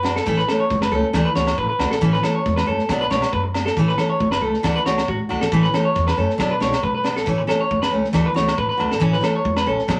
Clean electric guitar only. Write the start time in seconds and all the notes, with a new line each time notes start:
Already playing: B4
0.16 A4
0.37 B4
0.48 A4
0.60 C#5
0.82 B4
0.92 A4
1.25 B4
1.35 C#5
1.58 B4
1.69 B4
1.91 A4
2.13 B4
2.23 A4
2.35 C#5
2.56 B4
2.67 A4
3.01 B4
3.11 C#5
3.32 B4
3.44 muted clean electric guitar stroke
3.66 A4
3.88 B4
3.98 A4
4.09 C#5
4.31 B4
4.42 A4
4.76 B4
4.85 C#5
5.09 F#4
5.41 A4
5.63 B4
5.74 A4
5.85 C#5
6.07 B4
6.18 A4
6.51 B4
6.61 C#5
6.83 B4
6.95 B4
7.16 A4
7.38 muted clean electric guitar stroke
7.48 A4
7.61 C#5
7.82 B4
8.26 B4
8.36 C#5
8.58 B4
8.69 B4
8.91 A4
9.13 B4
9.24 A4
9.35 C#5
9.57 B4
9.67 A4